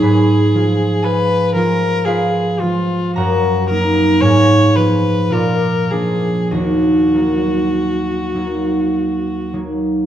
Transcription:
<<
  \new Staff \with { instrumentName = "Viola" } { \time 3/4 \key ees \minor \tempo 4 = 54 aes'4 ces''8 bes'8 aes'8 f'8 | ges'8 bes'8 des''8 ces''8 bes'8 aes'8 | ges'2~ ges'8 r8 | }
  \new Staff \with { instrumentName = "Harp" } { \time 3/4 \key ees \minor <aes' ces'' aes'' ces''' des'''>4 <aes' f'' aes''>4 <f' ces'' f''>4 | <bes' ges'' bes''>4 <aes' f'' aes''>4 <f' d'' f''>4 | <ees' bes' ees''>2. | }
  \new Staff \with { instrumentName = "Harp" } { \clef bass \time 3/4 \key ees \minor <aes, aes>8 <f aes f'>4 <f aes f'>4 <f aes f'>8 | ges,8 <ges bes ees'>8 aes,8 <f ces' f'>8 bes,8 <f bes d'>8 | ees,8 <ges bes ees'>4 <ges bes ees'>4 <ges bes ees'>8 | }
>>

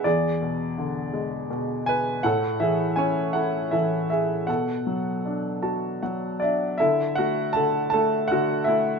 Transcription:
<<
  \new Staff \with { instrumentName = "Upright piano" } { \time 3/4 \key b \dorian \tempo 4 = 80 << { <gis' d''>2~ <gis' d''>8 <b' gis''>8 | <a' fis''>8 <gis' e''>8 <cis'' gis''>8 <a' fis''>8 <a' e''>8 <gis' e''>8 | <a' fis''>2~ <a' fis''>8 <d' d''>8 | \key d \major <e' a' e''>8 <fis' fis''>8 <a' a''>8 <a' a''>8 <fis' fis''>8 <e' e''>8 | } \\ { r2. | r2. | r4. a''8 fis''8 e''8 | r2. | } >> }
  \new Staff \with { instrumentName = "Upright piano" } { \clef bass \time 3/4 \key b \dorian e,8 b,8 d8 gis8 b,4 | a,8 e8 cis'8 e'8 e4 | b,8 fis8 d'8 fis'8 fis4 | \key d \major d8 a8 d8 a8 d8 a8 | }
>>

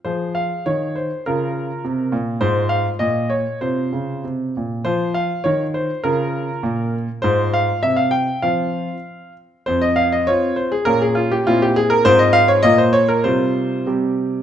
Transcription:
<<
  \new Staff \with { instrumentName = "Grand piano" } { \time 2/4 \key f \minor \tempo 4 = 100 << { c''8 f''8 des''8 c''8 | bes'4. r8 | c''8 f''8 ees''8 des''8 | c''4 r4 |
c''8 f''8 des''8 c''8 | bes'4. r8 | c''8 f''8 e''16 f''16 g''8 | f''4. r8 |
c''16 ees''16 f''16 ees''16 des''8 c''16 aes'16 | bes'16 aes'16 f'16 g'16 f'16 g'16 aes'16 bes'16 | c''16 ees''16 f''16 des''16 ees''16 c''16 des''16 bes'16 | c''4 r4 | } \\ { aes'2 | f'4 r4 | f'4 r4 | f'4 r4 |
f'2 | f'4 r4 | f'4 r4 | r2 |
r2 | r2 | r2 | r2 | } >> }
  \new Staff \with { instrumentName = "Grand piano" } { \clef bass \time 2/4 \key f \minor f4 ees4 | des4 c8 bes,8 | aes,4 bes,4 | c8 des8 c8 bes,8 |
f4 ees4 | des4 bes,4 | aes,4 c4 | <f c' f'>4 r4 |
f,4 <c' f'>4 | <bes, des' f'>4 <bes, c' e'>4 | <aes, c' f'>4 <bes, bes f'>4 | <c g f'>4 <c g g'>4 | }
>>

